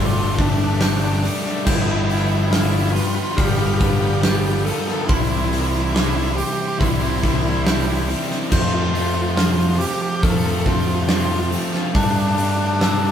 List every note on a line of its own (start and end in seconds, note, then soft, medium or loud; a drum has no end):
0.00 1.27 G1 loud
0.00 0.22 G3 medium
0.00 0.37 G3 medium
0.00 2.51 G3 medium
0.00 0.18 A3 medium
0.00 0.19 A3 medium
0.00 0.17 D4 medium
0.00 0.18 D4 medium
0.00 0.36 D4 medium
0.00 0.16 G4 medium
0.00 0.17 G4 medium
0.00 8.48 G4 medium
0.00 1.63 D5 medium
0.00 1.63 A5 medium
0.00 0.81 D6 medium
0.06 0.13 F4 medium
0.13 0.20 F4 loud
0.17 0.38 A3 medium
0.17 0.39 D4 medium
0.17 0.27 F4 medium
0.17 0.40 G4 medium
0.28 0.35 F4 medium
0.35 0.80 G3 medium
0.35 0.80 A3 medium
0.35 0.40 F4 medium
0.35 kick loud
0.35 open hi-hat medium
0.40 0.82 D4 medium
0.40 0.49 D4 loud
0.40 0.84 G4 loud
0.49 0.57 D4 medium
0.57 0.64 D4 medium
0.57 0.81 D4 medium
0.57 0.83 G4 medium
0.62 0.81 A3 medium
0.62 0.73 D4 medium
0.74 0.81 D4 medium
0.80 1.21 G3 loud
0.80 1.04 A3 loud
0.80 0.89 D4 medium
0.80 1.03 D4 loud
0.80 2.54 G4 medium
0.80 1.65 G6 medium
0.80 snare loud
0.80 open hi-hat loud
0.84 1.01 G4 loud
0.89 0.97 D4 medium
0.97 1.05 D4 medium
1.02 1.22 A3 medium
1.02 1.23 D4 medium
1.02 1.13 D4 medium
1.02 1.25 G4 medium
1.14 1.22 D4 medium
1.22 1.65 G3 medium
1.22 1.46 A3 medium
1.22 1.44 D4 medium
1.22 1.43 G4 medium
1.22 open hi-hat medium
1.43 1.65 A3 medium
1.43 1.64 D4 medium
1.43 1.67 G4 medium
1.43 snare soft
1.65 2.99 G1 loud
1.65 2.49 G2 loud
1.65 2.06 D3 loud
1.65 2.08 F3 loud
1.65 2.08 G3 loud
1.65 2.09 B3 loud
1.65 1.73 E4 loud
1.65 2.10 F4 loud
1.65 5.06 G5 medium
1.65 5.06 B5 loud
1.65 2.52 G6 loud
1.65 kick loud
1.65 crash loud
1.69 1.87 D4 loud
1.69 1.86 G4 loud
1.73 1.81 E4 medium
1.82 1.88 E4 medium
1.87 2.09 B3 medium
1.87 2.09 D4 medium
1.87 1.96 E4 medium
1.87 2.11 G4 medium
1.97 2.05 E4 medium
2.05 2.50 D3 medium
2.05 2.51 F3 medium
2.05 2.51 G3 medium
2.05 2.12 E4 medium
2.10 2.52 B3 medium
2.10 2.52 D4 medium
2.10 2.20 E4 medium
2.10 2.53 F4 medium
2.10 2.54 G4 medium
2.10 open hi-hat medium
2.20 2.28 E4 medium
2.28 2.36 E4 medium
2.37 2.44 E4 medium
2.44 2.51 E4 medium
2.50 3.16 G2 loud
2.50 2.93 D3 loud
2.50 2.74 F3 loud
2.50 2.93 G3 medium
2.50 2.73 B3 loud
2.50 2.95 D4 loud
2.50 2.59 E4 medium
2.50 2.71 F4 loud
2.50 2.96 G4 loud
2.50 3.36 F6 medium
2.50 snare loud
2.50 open hi-hat loud
2.60 2.66 E4 medium
2.66 2.74 E4 medium
2.72 2.94 F3 medium
2.72 2.94 B3 medium
2.72 2.83 E4 medium
2.72 2.94 F4 medium
2.83 2.91 E4 medium
2.91 3.79 G3 medium
2.91 2.93 E4 medium
2.91 3.00 F4 loud
2.91 muted overdriven electric guitar stroke medium
2.95 3.17 B3 loud
2.95 3.16 D4 loud
2.95 3.15 G4 medium
2.95 open hi-hat medium
3.01 3.08 F4 medium
3.08 3.15 F4 medium
3.15 3.59 B3 medium
3.15 3.58 D4 medium
3.15 3.23 F4 medium
3.15 3.57 G4 medium
3.23 3.31 F4 medium
3.32 3.39 F4 medium
3.32 3.43 G4 loud
3.37 4.70 G1 loud
3.37 3.78 D3 medium
3.37 3.60 F3 medium
3.37 6.79 G3 medium
3.37 3.59 B3 medium
3.37 3.57 F4 medium
3.37 4.23 F6 loud
3.37 kick loud
3.37 open hi-hat loud
3.44 3.50 G4 medium
3.51 3.58 G4 medium
3.58 3.81 B3 medium
3.58 3.80 D4 medium
3.58 3.82 F4 medium
3.58 3.82 G4 medium
3.58 3.66 G4 medium
3.62 3.80 F3 medium
3.66 3.74 G4 loud
3.75 3.82 G4 medium
3.79 4.22 D3 medium
3.79 4.23 F3 medium
3.79 4.21 G3 medium
3.79 4.24 B3 medium
3.79 4.02 D4 medium
3.79 4.24 F4 medium
3.79 3.89 G4 loud
3.79 4.01 G4 medium
3.79 kick loud
3.79 open hi-hat medium
3.90 3.98 G4 medium
3.99 4.05 G4 loud
3.99 4.25 G4 medium
4.03 4.22 B3 medium
4.03 4.23 D4 medium
4.03 4.13 G4 medium
4.14 4.22 G4 loud
4.22 4.87 G2 loud
4.22 4.63 D3 loud
4.22 4.45 F3 loud
4.22 4.65 G3 loud
4.22 4.44 B3 loud
4.22 4.66 D4 loud
4.22 4.42 F4 loud
4.22 4.30 G4 medium
4.22 4.68 G4 loud
4.22 5.09 G6 loud
4.22 snare loud
4.22 open hi-hat loud
4.30 4.37 G4 loud
4.37 4.45 G4 medium
4.43 4.65 F3 medium
4.43 4.66 B3 medium
4.43 4.67 F4 medium
4.43 4.52 G4 medium
4.53 4.61 G4 medium
4.65 5.06 D3 medium
4.65 4.89 F3 medium
4.65 5.08 G3 medium
4.65 4.87 B3 medium
4.65 4.87 D4 medium
4.65 4.85 F4 loud
4.65 4.86 G4 loud
4.65 4.72 A4 loud
4.65 open hi-hat medium
4.72 4.80 A4 medium
4.80 4.88 A4 medium
4.86 5.08 F3 medium
4.86 5.07 B3 medium
4.86 5.07 D4 medium
4.86 5.06 F4 medium
4.86 5.10 G4 medium
4.86 4.92 A4 medium
4.86 snare soft
4.93 5.00 A4 medium
5.02 5.12 E4 loud
5.02 5.09 A4 medium
5.07 6.41 C2 loud
5.07 5.49 C3 loud
5.07 5.49 E3 medium
5.07 5.51 G3 loud
5.07 5.53 C4 loud
5.07 5.53 E4 loud
5.07 5.29 G4 loud
5.07 8.48 E5 medium
5.07 5.95 C6 loud
5.07 8.48 C6 loud
5.07 kick loud
5.07 open hi-hat medium
5.13 5.21 E4 medium
5.22 5.29 E4 medium
5.29 5.51 G3 medium
5.29 5.52 C4 medium
5.29 5.37 E4 medium
5.29 5.53 G4 medium
5.38 5.45 E4 medium
5.45 5.52 E4 medium
5.50 5.92 C3 medium
5.50 5.93 E3 medium
5.50 5.94 G3 medium
5.50 5.95 C4 medium
5.50 5.60 E4 medium
5.50 5.96 E4 medium
5.50 5.96 G4 medium
5.50 open hi-hat medium
5.61 5.68 E4 medium
5.69 5.75 E4 loud
5.76 5.84 E4 medium
5.85 5.92 E4 medium
5.93 6.36 C3 loud
5.93 6.35 E3 medium
5.93 6.18 G3 loud
5.93 6.16 C4 loud
5.93 6.00 E4 medium
5.93 6.14 E4 loud
5.93 6.39 G4 loud
5.93 6.80 D6 medium
5.93 snare loud
5.93 open hi-hat medium
6.00 6.08 E4 medium
6.09 6.17 E4 medium
6.15 6.37 G3 medium
6.15 6.37 C4 medium
6.15 6.37 E4 medium
6.15 6.24 E4 medium
6.25 6.31 E4 medium
6.32 6.36 E4 medium
6.36 7.01 E3 medium
6.36 6.60 G3 medium
6.36 6.59 C4 medium
6.36 6.44 G4 loud
6.36 6.58 G4 medium
6.36 muted overdriven electric guitar stroke soft
6.36 open hi-hat medium
6.44 6.52 G4 medium
6.53 6.60 G4 medium
6.58 7.03 G3 medium
6.58 7.01 C4 medium
6.58 7.00 G4 medium
6.58 6.68 G4 medium
6.68 6.77 G4 medium
6.78 8.13 C2 loud
6.78 7.21 C3 medium
6.78 7.03 G3 medium
6.78 7.01 C4 medium
6.78 6.87 E4 medium
6.78 6.99 E4 medium
6.78 7.66 C6 medium
6.78 kick loud
6.78 open hi-hat medium
6.88 6.94 E4 medium
6.94 7.01 E4 medium
7.00 7.23 G3 medium
7.00 7.23 C4 medium
7.00 7.24 E4 medium
7.00 7.10 E4 medium
7.00 7.24 G4 medium
7.10 7.17 E4 medium
7.18 7.64 E3 medium
7.18 7.26 E4 medium
7.22 7.63 C3 medium
7.22 7.65 G3 medium
7.22 7.66 C4 medium
7.22 7.67 E4 medium
7.22 7.43 G4 medium
7.22 kick medium
7.22 open hi-hat medium
7.26 7.34 E4 medium
7.35 7.42 E4 medium
7.42 7.66 G3 medium
7.42 7.66 C4 medium
7.42 7.50 E4 medium
7.42 7.67 G4 medium
7.50 7.56 E4 medium
7.57 7.64 E4 medium
7.65 8.05 C3 medium
7.65 8.06 E3 medium
7.65 7.88 G3 loud
7.65 7.86 C4 medium
7.65 7.72 E4 medium
7.65 7.84 E4 loud
7.65 8.10 G4 medium
7.65 8.51 G6 medium
7.65 snare loud
7.65 open hi-hat loud
7.72 7.80 E4 medium
7.81 7.89 E4 medium
7.81 8.09 E4 medium
7.87 8.08 G3 medium
7.87 8.08 C4 medium
7.87 7.97 E4 medium
7.97 8.05 E4 medium
8.06 8.48 C3 medium
8.06 8.48 E3 medium
8.06 8.31 G3 medium
8.06 8.28 C4 medium
8.06 8.27 E4 medium
8.06 open hi-hat medium
8.10 8.28 G4 medium
8.28 8.50 G3 medium
8.28 8.49 C4 medium
8.28 8.48 E4 medium
8.28 8.53 G4 medium
8.28 snare soft
8.49 9.84 F2 loud
8.49 8.91 F3 loud
8.49 8.94 A3 loud
8.49 8.94 C4 loud
8.49 8.60 F4 medium
8.49 8.95 F4 loud
8.49 13.12 G4 medium
8.49 11.91 F5 medium
8.49 13.12 A5 medium
8.49 9.38 G6 loud
8.49 kick loud
8.49 crash loud
8.62 8.68 F4 medium
8.68 8.75 F4 medium
8.68 8.95 F4 medium
8.74 8.94 A3 medium
8.74 8.94 C4 medium
8.74 8.82 F4 medium
8.83 8.89 F4 medium
8.89 9.34 F3 medium
8.89 8.97 F4 medium
8.94 9.37 A3 medium
8.94 9.37 C4 medium
8.94 9.38 F4 medium
8.94 open hi-hat medium
8.98 9.06 F4 medium
9.07 9.14 F4 medium
9.14 9.22 F4 medium
9.22 9.30 F4 medium
9.31 9.37 F4 medium
9.36 9.78 F3 medium
9.36 9.60 A3 loud
9.36 9.58 C4 loud
9.36 9.45 F4 medium
9.36 9.56 F4 loud
9.36 10.22 F6 medium
9.36 snare loud
9.36 open hi-hat loud
9.46 9.53 F4 medium
9.53 9.61 F4 medium
9.53 9.79 F4 medium
9.59 9.79 A3 medium
9.59 9.79 C4 medium
9.59 9.69 F4 medium
9.70 9.76 F4 medium
9.76 10.44 F3 medium
9.76 9.79 F4 medium
9.76 9.86 G4 medium
9.76 muted overdriven electric guitar stroke medium
9.80 10.02 A3 medium
9.80 10.01 C4 medium
9.80 9.99 F4 medium
9.80 open hi-hat medium
9.87 9.94 G4 medium
9.94 10.01 G4 medium
10.00 10.45 A3 medium
10.00 10.44 C4 medium
10.00 10.43 F4 medium
10.00 10.09 G4 medium
10.10 10.16 G4 medium
10.16 10.24 G4 medium
10.21 11.55 F2 medium
10.21 10.64 F3 medium
10.21 10.46 A3 medium
10.21 10.44 C4 medium
10.21 10.42 F4 medium
10.21 10.30 A4 loud
10.21 11.09 F6 medium
10.21 kick loud
10.21 open hi-hat loud
10.31 10.38 A4 medium
10.38 10.46 A4 loud
10.44 10.65 A3 medium
10.44 10.66 C4 medium
10.44 10.67 F4 medium
10.44 10.51 A4 loud
10.52 10.59 A4 loud
10.60 10.68 A4 medium
10.65 11.07 F3 medium
10.65 11.08 A3 medium
10.65 11.09 C4 medium
10.65 10.73 F4 medium
10.65 11.10 F4 medium
10.65 kick medium
10.65 open hi-hat medium
10.73 10.80 F4 medium
10.81 10.87 F4 medium
10.86 11.07 A3 medium
10.86 11.08 C4 medium
10.86 11.09 F4 medium
10.86 10.95 F4 medium
10.95 11.03 F4 medium
11.03 11.10 F4 medium
11.08 11.50 F3 medium
11.08 11.32 A3 loud
11.08 11.30 C4 medium
11.08 11.16 F4 medium
11.08 11.29 F4 loud
11.08 13.12 G4 medium
11.08 11.95 A6 medium
11.08 snare loud
11.08 open hi-hat loud
11.17 11.24 F4 medium
11.26 11.32 F4 medium
11.30 11.52 A3 medium
11.30 11.53 C4 medium
11.30 11.54 F4 medium
11.30 11.39 F4 medium
11.40 11.47 F4 medium
11.52 11.92 F3 medium
11.52 11.76 A3 medium
11.52 11.74 C4 medium
11.52 11.72 F4 medium
11.52 open hi-hat medium
11.73 11.94 A3 medium
11.73 11.93 C4 medium
11.73 11.92 F4 medium
11.73 snare soft
11.94 13.12 G2 loud
11.94 12.36 G3 loud
11.94 12.36 A3 loud
11.94 12.03 D4 loud
11.94 12.38 D4 loud
11.94 12.40 G4 loud
11.94 13.12 D5 medium
11.94 12.81 D6 loud
11.94 kick loud
11.94 open hi-hat medium
12.04 12.10 D4 medium
12.11 12.18 D4 medium
12.11 12.39 G4 medium
12.16 12.37 A3 medium
12.16 12.38 D4 medium
12.16 12.26 D4 medium
12.27 12.34 D4 medium
12.34 12.79 G3 medium
12.34 12.80 A3 medium
12.34 12.42 D4 medium
12.34 open hi-hat medium
12.39 12.82 D4 medium
12.39 12.83 G4 medium
12.43 12.49 D4 medium
12.49 12.57 D4 medium
12.57 12.65 D4 medium
12.65 12.73 D4 medium
12.73 12.80 D4 medium
12.80 13.12 G3 medium
12.80 13.04 A3 loud
12.80 12.88 D4 medium
12.80 13.03 D4 loud
12.80 13.01 G4 loud
12.80 13.12 E6 medium
12.80 snare loud
12.80 open hi-hat medium
12.89 12.96 D4 medium
12.97 13.04 D4 medium
13.01 13.12 A3 medium
13.01 13.12 D4 medium
13.01 13.11 D4 medium
13.01 13.12 G4 medium